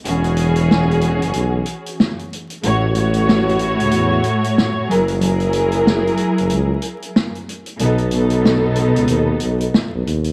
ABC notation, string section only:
X:1
M:4/4
L:1/8
Q:"Swing 16ths" 1/4=93
K:E
V:1 name="String section"
[E,CFG]6 z2 | [A,,A,Fc] [A,,A,Fc]6 [F,EG^A] | [F,EG^A]6 z2 | [B,,B,DA] [B,,B,DA]6 z |]